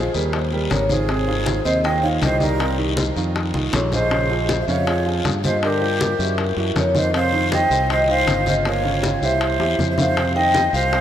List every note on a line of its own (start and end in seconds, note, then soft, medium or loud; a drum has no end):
0.00 0.29 G#4 medium
0.00 0.74 C5 medium
0.14 0.67 D#2 medium
0.14 0.45 G3 medium
0.14 0.45 G4 medium
0.14 0.45 A#4 medium
0.14 high conga soft
0.14 short guiro medium
0.33 high bongo medium
0.33 high conga soft
0.33 long guiro medium
0.52 0.83 G3 medium
0.52 0.83 G4 medium
0.52 0.83 A#4 medium
0.52 high bongo soft
0.52 high conga soft
0.70 1.59 G#1 medium
0.70 0.87 A#4 medium
0.70 0.90 C#5 medium
0.70 high bongo medium
0.70 low bongo medium
0.70 high conga medium
0.70 short guiro medium
0.88 1.06 D#3 medium
0.88 1.06 D#4 medium
0.88 1.06 F4 medium
0.88 1.60 G#4 medium
0.88 1.61 C5 medium
0.88 high bongo soft
0.88 high conga medium
0.88 short guiro medium
1.08 1.24 C3 medium
1.08 1.24 C4 medium
1.08 1.25 C5 medium
1.08 high bongo medium
1.08 high conga soft
1.08 long guiro medium
1.27 1.58 D#3 medium
1.27 1.59 D#4 medium
1.27 1.59 F4 medium
1.27 high bongo soft
1.27 high conga soft
1.46 high bongo medium
1.46 high conga medium
1.46 short guiro medium
1.64 2.18 D#2 medium
1.64 1.81 C3 medium
1.64 1.81 C4 medium
1.64 1.82 C5 medium
1.64 1.81 C5 medium
1.64 1.83 D#5 medium
1.64 short guiro medium
1.83 1.99 D#3 medium
1.83 1.99 D#4 medium
1.83 2.00 F4 medium
1.83 2.01 D#5 medium
1.83 2.02 G5 loud
1.83 high bongo medium
1.83 high conga soft
1.83 long guiro medium
2.02 2.33 D#3 medium
2.02 2.34 D#4 medium
2.02 2.34 F4 medium
2.02 2.08 C#5 medium
2.02 2.12 F5 medium
2.02 high bongo soft
2.02 high conga soft
2.22 3.11 C2 medium
2.22 2.39 C5 medium
2.22 2.42 D#5 medium
2.22 high bongo medium
2.22 low bongo medium
2.22 high conga medium
2.22 short guiro medium
2.40 2.56 D#3 medium
2.40 2.56 D#4 medium
2.40 2.56 G4 medium
2.40 2.76 A#4 medium
2.40 2.76 D5 medium
2.40 high bongo soft
2.40 high conga medium
2.40 short guiro medium
2.59 2.75 C3 medium
2.59 2.75 C4 medium
2.59 2.75 C5 medium
2.59 high bongo medium
2.59 high conga soft
2.59 long guiro medium
2.78 3.09 D#3 medium
2.78 3.09 D#4 medium
2.78 3.10 G4 medium
2.78 high bongo soft
2.78 high conga soft
2.97 high bongo medium
2.97 high conga medium
2.97 short guiro medium
3.16 3.51 F2 medium
3.16 3.47 D#3 medium
3.16 3.48 D#4 medium
3.16 3.48 F4 medium
3.16 high conga soft
3.16 short guiro medium
3.35 high bongo medium
3.35 high conga soft
3.35 long guiro medium
3.54 3.72 C2 medium
3.54 3.85 D#3 medium
3.54 3.85 D#4 medium
3.54 3.86 F4 medium
3.54 high bongo soft
3.54 high conga medium
3.73 4.62 A#1 medium
3.73 3.80 A4 medium
3.73 3.83 C#5 medium
3.73 high bongo medium
3.73 low bongo medium
3.73 high conga medium
3.73 short guiro medium
3.92 4.08 F3 medium
3.92 4.08 F4 medium
3.92 4.08 G#4 medium
3.92 4.57 C5 medium
3.92 4.64 D#5 medium
3.92 high bongo soft
3.92 low conga medium
3.92 short guiro medium
4.11 4.26 C#3 medium
4.11 4.27 C#4 medium
4.11 4.27 C#5 medium
4.11 high bongo medium
4.11 high conga soft
4.11 long guiro medium
4.30 4.61 F3 medium
4.30 4.61 F4 medium
4.30 4.61 G#4 medium
4.30 high bongo soft
4.30 high conga soft
4.49 high bongo medium
4.49 high conga medium
4.49 short guiro medium
4.61 4.68 C5 medium
4.61 4.68 E5 medium
4.68 5.20 F2 medium
4.68 4.84 C#3 medium
4.68 4.84 C#4 medium
4.68 5.21 C#5 medium
4.68 4.84 C#5 medium
4.68 5.22 F5 medium
4.68 short guiro medium
4.87 5.02 F3 medium
4.87 5.03 F4 medium
4.87 5.03 G#4 medium
4.87 high bongo medium
4.87 high conga soft
4.87 long guiro medium
5.05 5.37 F3 medium
5.05 5.37 F4 medium
5.05 5.37 G#4 medium
5.05 high bongo soft
5.05 high conga soft
5.24 6.13 G2 medium
5.24 high bongo medium
5.24 low bongo medium
5.24 high conga medium
5.24 short guiro medium
5.43 5.59 F3 medium
5.43 5.59 F4 medium
5.43 5.59 G4 medium
5.43 5.61 C5 medium
5.43 5.62 D#5 medium
5.43 high bongo soft
5.43 high conga medium
5.43 short guiro medium
5.62 5.78 D3 medium
5.62 5.78 D4 medium
5.62 6.34 G4 medium
5.62 6.80 A#4 medium
5.62 5.78 D5 medium
5.62 high bongo medium
5.62 high conga soft
5.62 long guiro medium
5.81 6.12 F3 medium
5.81 6.12 F4 medium
5.81 6.12 G4 medium
5.81 high bongo soft
5.81 high conga soft
6.00 high bongo medium
6.00 high conga medium
6.00 short guiro medium
6.19 6.54 F#2 medium
6.19 6.50 E3 medium
6.19 6.50 E4 medium
6.19 6.50 F#4 medium
6.19 high conga soft
6.19 short guiro medium
6.38 high bongo medium
6.38 high conga soft
6.38 long guiro medium
6.57 6.74 F#2 medium
6.57 6.88 E3 medium
6.57 6.88 E4 medium
6.57 6.88 F#4 medium
6.57 high bongo soft
6.57 high conga soft
6.76 7.65 F2 medium
6.76 6.94 A#4 medium
6.76 6.95 C#5 medium
6.76 high bongo medium
6.76 low bongo medium
6.76 high conga medium
6.76 short guiro medium
6.94 7.10 D#3 medium
6.94 7.10 D#4 medium
6.94 7.10 F4 medium
6.94 7.13 C5 medium
6.94 7.16 D#5 medium
6.94 high bongo soft
6.94 high conga medium
6.94 short guiro medium
7.13 7.29 C3 medium
7.13 7.29 C4 medium
7.13 7.29 C5 medium
7.13 7.50 C5 medium
7.13 7.50 F5 medium
7.13 high bongo medium
7.13 high conga soft
7.13 long guiro medium
7.33 7.64 D#3 medium
7.33 7.64 D#4 medium
7.33 7.64 F4 medium
7.33 high bongo soft
7.33 high conga soft
7.52 7.88 D#5 medium
7.52 7.88 G5 loud
7.52 high bongo medium
7.52 high conga medium
7.52 short guiro medium
7.70 8.23 C2 medium
7.70 7.86 C3 medium
7.70 7.86 C4 medium
7.70 7.86 C5 medium
7.70 short guiro medium
7.89 8.05 D#3 medium
7.89 8.05 D#4 medium
7.89 8.05 F4 medium
7.89 8.08 C5 medium
7.89 8.09 D#5 medium
7.89 high bongo medium
7.89 high conga soft
7.89 long guiro medium
8.08 8.40 D#3 medium
8.08 8.40 D#4 medium
8.08 8.40 F4 medium
8.08 8.45 C5 medium
8.08 8.49 F5 medium
8.08 high bongo soft
8.08 high conga soft
8.27 9.16 G1 medium
8.27 high bongo medium
8.27 low bongo medium
8.27 high conga medium
8.27 short guiro medium
8.46 8.62 C#3 medium
8.46 8.62 C#4 medium
8.46 8.62 F4 medium
8.46 8.54 C5 medium
8.46 8.56 D#5 medium
8.46 high bongo soft
8.46 high conga medium
8.46 short guiro medium
8.65 8.81 A#2 medium
8.65 8.81 A#3 medium
8.65 8.81 A#4 medium
8.65 9.19 C#5 medium
8.65 9.25 F5 medium
8.65 high bongo medium
8.65 high conga soft
8.65 long guiro medium
8.84 9.15 C#3 medium
8.84 9.16 C#4 medium
8.84 9.16 F4 medium
8.84 high bongo soft
8.84 high conga soft
9.03 high bongo medium
9.03 high conga medium
9.03 short guiro medium
9.22 9.57 C2 medium
9.22 9.53 E3 medium
9.22 9.53 E4 medium
9.22 9.53 G4 medium
9.22 9.87 C5 medium
9.22 9.90 E5 medium
9.22 high conga soft
9.22 short guiro medium
9.41 high bongo medium
9.41 high conga soft
9.41 long guiro medium
9.60 9.77 E2 medium
9.60 9.91 E3 medium
9.60 9.91 E4 medium
9.60 9.91 G4 medium
9.60 high bongo medium
9.60 high conga soft
9.79 10.67 F2 medium
9.79 high bongo medium
9.79 high conga medium
9.79 short guiro medium
9.91 9.97 C5 medium
9.91 9.98 E5 medium
9.98 10.14 D#3 medium
9.98 10.14 D#4 medium
9.98 10.14 F4 medium
9.98 10.33 C5 medium
9.98 10.37 F5 medium
9.98 low bongo medium
9.98 high conga medium
9.98 short guiro medium
10.17 10.32 C3 medium
10.17 10.33 C4 medium
10.17 10.33 C5 medium
10.17 high bongo medium
10.17 high conga soft
10.17 long guiro medium
10.35 10.67 D#3 medium
10.35 10.67 D#4 medium
10.35 10.67 D#5 medium
10.35 10.71 D#5 medium
10.35 10.71 G5 loud
10.35 high bongo soft
10.35 high conga soft
10.54 high bongo medium
10.54 high conga medium
10.54 short guiro medium
10.73 11.01 C2 medium
10.73 10.89 F3 medium
10.73 10.89 F4 medium
10.73 11.01 C5 medium
10.73 10.89 F5 medium
10.73 11.01 F5 medium
10.73 short guiro medium
10.92 11.01 C4 medium
10.92 11.01 C5 medium
10.92 11.01 C6 medium
10.92 high bongo medium
10.92 high conga soft
10.92 long guiro medium